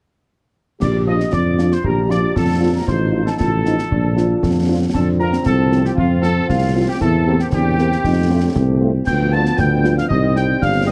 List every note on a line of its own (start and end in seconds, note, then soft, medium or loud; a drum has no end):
0.81 1.25 A#1 medium
0.81 2.84 F3 medium
0.81 2.84 D4 medium
0.81 1.34 G4 medium
0.81 0.94 D5 medium
0.81 1.05 D6 medium
0.81 concert bass drum medium
0.81 snare medium
0.81 crash soft
1.07 1.17 F3 medium
1.07 1.17 D4 medium
1.07 1.17 F4 medium
1.07 1.31 D#5 medium
1.07 1.13 D#6 medium
1.20 snare medium
1.33 1.76 F2 medium
1.33 1.85 F4 medium
1.33 1.69 D5 medium
1.33 1.74 D6 medium
1.33 concert bass drum medium
1.33 snare medium
1.59 1.68 F3 medium
1.59 1.68 D4 medium
1.59 1.68 F4 medium
1.59 snare soft
1.72 1.84 C5 medium
1.72 1.87 C6 medium
1.72 snare soft
1.84 2.28 A#1 medium
1.84 2.38 G4 medium
1.84 1.97 A#4 medium
1.84 2.12 A#5 medium
1.84 concert bass drum medium
2.09 2.19 F3 medium
2.09 2.19 D4 medium
2.09 2.19 F4 medium
2.09 2.35 D5 medium
2.09 2.36 D6 medium
2.09 snare soft
2.36 2.80 F2 medium
2.36 3.38 F4 medium
2.36 2.72 A4 medium
2.36 2.73 A5 medium
2.36 concert bass drum medium
2.36 snare medium
2.61 2.71 F3 medium
2.61 2.70 D4 medium
2.61 2.70 F4 medium
2.76 2.89 A#4 medium
2.76 2.87 A#5 medium
2.88 3.31 A1 medium
2.88 4.91 F3 medium
2.88 3.87 D#4 medium
2.88 3.24 C5 medium
2.88 3.24 C6 medium
2.88 concert bass drum medium
2.88 snare medium
3.12 3.22 F3 medium
3.12 3.22 D#4 medium
3.12 3.22 F4 medium
3.26 3.32 A4 medium
3.26 3.39 A5 medium
3.26 snare medium
3.39 3.83 A1 medium
3.39 3.50 F4 medium
3.39 4.64 A4 medium
3.39 4.65 A5 medium
3.39 concert bass drum medium
3.39 snare medium
3.64 3.75 F3 medium
3.64 3.76 D#4 medium
3.64 3.75 D#4 medium
3.64 3.75 F4 medium
3.64 snare medium
3.79 snare medium
3.91 4.35 A#1 medium
3.91 4.94 D4 medium
3.91 4.15 D4 medium
3.91 concert bass drum medium
4.16 4.26 F3 medium
4.16 4.26 D4 medium
4.16 4.26 F4 medium
4.16 4.91 F4 medium
4.16 snare soft
4.43 4.86 F2 medium
4.43 concert bass drum medium
4.43 snare medium
4.69 4.78 F3 medium
4.69 4.78 D4 medium
4.69 4.78 F4 medium
4.93 5.38 F2 medium
4.93 6.97 F3 medium
4.93 7.00 C4 medium
4.93 5.47 D4 medium
4.93 5.06 A4 medium
4.93 4.99 A5 medium
4.93 concert bass drum medium
4.93 snare medium
4.93 crash soft
5.20 5.30 F3 medium
5.20 5.30 C4 medium
5.20 5.29 F4 medium
5.20 5.32 A#4 loud
5.20 5.48 A#5 medium
5.33 snare medium
5.45 5.90 C2 medium
5.45 7.00 C4 medium
5.45 5.82 A4 medium
5.45 5.85 A5 medium
5.45 concert bass drum medium
5.45 snare medium
5.72 5.82 F3 medium
5.72 5.82 C4 medium
5.72 5.81 F4 medium
5.72 snare medium
5.85 5.91 G4 medium
5.85 5.91 G5 medium
5.85 snare medium
5.96 6.41 F2 medium
5.96 6.21 F4 medium
5.96 6.22 F5 medium
5.96 concert bass drum medium
6.22 6.32 F3 medium
6.22 6.32 C4 medium
6.22 6.32 F4 medium
6.22 6.47 A4 loud
6.22 6.49 A5 medium
6.22 snare soft
6.49 6.88 C2 medium
6.49 6.85 F4 medium
6.49 6.86 F5 medium
6.49 concert bass drum medium
6.49 snare medium
6.75 6.85 F3 medium
6.75 6.85 C4 medium
6.75 6.85 F4 medium
6.88 6.94 G4 medium
6.88 7.03 G5 medium
7.01 7.44 E2 medium
7.01 8.00 A#3 medium
7.01 8.92 C4 medium
7.01 7.32 E4 medium
7.01 7.38 A4 loud
7.01 7.39 A5 medium
7.01 concert bass drum medium
7.01 snare medium
7.27 7.37 A#3 medium
7.27 7.37 C4 medium
7.27 7.36 G4 medium
7.39 7.46 G4 medium
7.39 7.45 G5 medium
7.39 snare medium
7.52 7.96 E2 medium
7.52 7.76 D4 medium
7.52 8.79 G4 loud
7.52 8.78 G5 medium
7.52 concert bass drum medium
7.52 snare medium
7.78 7.88 A#3 medium
7.78 7.90 C4 medium
7.78 7.88 C4 medium
7.78 7.88 G4 medium
7.78 snare soft
7.92 snare soft
8.04 8.48 F2 medium
8.04 8.92 A3 medium
8.04 8.32 D#4 medium
8.04 concert bass drum medium
8.04 snare medium
8.30 8.39 A3 medium
8.30 8.39 C4 medium
8.30 8.56 D4 medium
8.30 8.39 F4 medium
8.56 8.99 C2 medium
8.56 9.08 C4 medium
8.56 concert bass drum medium
8.56 snare medium
8.81 8.91 A3 medium
8.81 8.91 C4 medium
8.81 8.91 F4 medium
9.07 9.51 D2 medium
9.07 10.07 F3 medium
9.07 9.60 B3 medium
9.07 10.12 B3 medium
9.07 9.31 G5 loud
9.07 9.13 G6 medium
9.07 concert bass drum medium
9.07 snare medium
9.07 crash soft
9.32 9.42 G3 medium
9.32 9.42 B3 medium
9.32 9.42 F4 medium
9.32 9.59 A5 loud
9.32 9.57 A6 medium
9.46 snare medium
9.58 10.02 D2 medium
9.58 10.10 D4 medium
9.58 9.97 G5 loud
9.58 9.95 G6 medium
9.58 concert bass drum medium
9.58 snare medium
9.83 9.93 G3 medium
9.83 9.93 B3 medium
9.83 9.93 F4 medium
9.83 snare medium
9.97 10.03 F5 medium
9.97 10.10 F6 medium
9.97 snare medium
10.09 10.54 C2 medium
10.09 10.92 G3 medium
10.09 10.92 C4 medium
10.09 10.59 D#4 medium
10.09 10.34 D#5 loud
10.09 10.16 D#6 medium
10.09 concert bass drum medium
10.35 10.45 G3 medium
10.35 10.45 C4 medium
10.35 10.45 G4 medium
10.35 10.60 G5 loud
10.35 10.61 G6 medium
10.35 snare soft
10.61 10.92 G1 medium
10.61 10.92 D4 medium
10.61 10.86 F5 loud
10.61 10.86 F6 medium
10.61 concert bass drum medium
10.61 snare medium
10.86 10.92 G3 medium
10.86 10.92 C4 medium
10.86 10.92 G4 medium
10.86 10.92 D#5 loud
10.86 10.92 D#6 medium